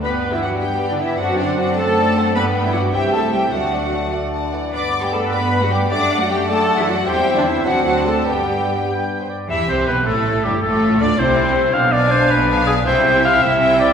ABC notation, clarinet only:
X:1
M:6/8
L:1/16
Q:3/8=103
K:G
V:1 name="Clarinet"
d12- | d12 | d6 e6 | d12- |
d12 | d12 | c6 d6 | d6 g3 c d2 |
[K:C] e2 c2 B2 A4 G2 | A4 d2 c6 | f2 d2 c2 B4 ^G2 | c4 f2 e4 d2 |]